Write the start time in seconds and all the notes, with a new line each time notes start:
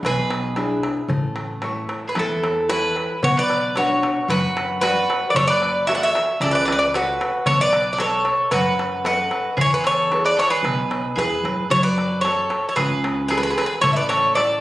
0.03 B1 B2 B4, darbuka tek
0.07 G#4
0.18 darbuka tek
0.30 darbuka tek
0.56 D4 E4 G#4, darbuka tek
0.83 darbuka tek
0.97 darbuka tek
1.08 A1 A3, darbuka dum
1.24 darbuka tek
1.36 darbuka tek
1.50 darbuka tek
1.62 A3 E4 C#5, darbuka tek
1.76 darbuka tek
1.89 darbuka tek
2.08 G#4 B4
2.15 E2 E3 E4 A4, darbuka tek
2.29 darbuka tek
2.44 darbuka tek
2.57 darbuka tek
2.69 E4 A4 B4 C#5, darbuka tek
2.96 darbuka tek
3.23 B1 B3 F#4 C#5, darbuka dum
3.37 B4 D5
3.50 darbuka tek
3.76 D4 F#4 B4 C#5, darbuka tek
3.90 darbuka tek
4.03 darbuka tek
4.17 darbuka tek
4.28 F#2 F#3 F#4 B4, darbuka tek, darbuka dum
4.57 darbuka tek
4.81 F#4 B4 D5, darbuka tek
5.10 darbuka tek
5.22 darbuka tek
5.30 B4 D5
5.34 F#1 F#3 A4 C#5, darbuka dum
5.47 B4 D5
5.62 darbuka tek
5.87 F#4 A4 C#5 E5, darbuka tek
5.95 D5 F#5
6.02 C#5 E5, darbuka tek
6.15 darbuka tek
6.27 darbuka tek
6.40 C#2 C#3 A4 D5, darbuka tek, darbuka dum
6.51 B4 D5
6.59 B4
6.65 B4 D5, darbuka tek
6.72 B4 D5
6.79 B4 D5
6.94 F#4 A4 B4 C#5, darbuka tek
7.21 darbuka tek
7.34 darbuka tek
7.46 B1 B3 A4 C#5, darbuka dum
7.61 B4 D5
7.73 darbuka tek
7.93 A4 D5
7.99 A4 B4 C#5 D#5, darbuka tek
8.12 darbuka tek
8.25 darbuka tek
8.38 darbuka tek
8.51 F#2 F#3 F#4 B4, darbuka tek, darbuka dum
8.79 darbuka tek
9.04 F#4 A4 B4 D#5, darbuka tek
9.31 darbuka tek
9.44 darbuka tek
9.57 E2 E3 G#4, darbuka dum
9.61 C#5
9.70 G#4 B4
9.84 A4 C#5, darbuka tek
9.98 darbuka tek
10.12 E4 G#4 B4, darbuka tek
10.25 B4 D5
10.37 A4 C#5, darbuka tek
10.50 G#4 B4, darbuka tek
10.63 B1 B2, darbuka tek, darbuka dum
10.79 darbuka tek
10.91 darbuka tek
11.05 darbuka tek
11.16 E2 E4 G#4 B4, darbuka tek
11.32 darbuka tek
11.44 F#2, darbuka tek
11.70 F#2 F#3 A4 C#5, darbuka dum
11.83 B4 D5
11.98 darbuka tek
12.21 F#4 A4 C#5, darbuka tek
12.25 A4
12.37 darbuka tek
12.50 darbuka tek
12.65 darbuka tek
12.69 A4 C#5
12.76 C#2 C#3 G#4 B4, darbuka tek, darbuka dum
13.04 darbuka tek
13.28 F#4 G#4 A4 B4, darbuka tek
13.37 G#4 B4
13.43 G#4 B4
13.50 G#4 B4
13.58 G#4 B4, darbuka tek
13.66 G#4 B4
13.70 darbuka tek
13.81 A1 A3 A4 C#5, darbuka dum
13.92 B4 C#5 E5
13.96 D5
14.09 A4 C#5, darbuka tek
14.35 E4 A4 C#5 D5, darbuka tek
14.50 darbuka tek